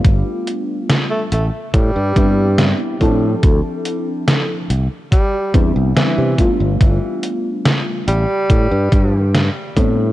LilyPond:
<<
  \new Staff \with { instrumentName = "FM electric piano" } { \time 4/4 \key a \minor \tempo 4 = 71 <g a b d' f'>4. r4 <g b c' d' e'>8 <g b c' d' e'>8 <f c' d' e' a'>8~ | <f c' d' e' a'>4. r4 <g b c' d' e'>8 <g b c' d' e'>8 <g a b d' f'>8~ | <g a b d' f'>4. r2 <g b c' d' e'>8 | }
  \new Staff \with { instrumentName = "Tenor saxophone" } { \clef bass \time 4/4 \key a \minor r4 r16 a16 a16 r16 g4. r8 | r2 g8 r8 e8 r8 | r4. g4. r4 | }
  \new Staff \with { instrumentName = "Fingered electric bass" } { \clef bass \time 4/4 \key a \minor g,,16 r4 r16 a,,16 r16 a,16 g,16 g,8. r16 a,8 | d,16 r4 r16 c,16 r8. e,16 c,16 r16 c16 r16 g,,16 | g,,16 r4 r16 a,,16 r16 a,16 g,16 g,8. r16 a,8 | }
  \new DrumStaff \with { instrumentName = "Drums" } \drummode { \time 4/4 <hh bd>8 hh8 <hh sn>8 hh8 <hh bd>8 <hh bd>8 <hh sn>8 <hh bd>8 | <hh bd>8 hh8 <hh sn>8 hh8 <hh bd>8 <hh bd>8 <hh sn>8 <hh bd>8 | <hh bd>8 hh8 <hh sn>8 hh8 <hh bd>8 <hh bd>8 <hh sn>8 <hh bd>8 | }
>>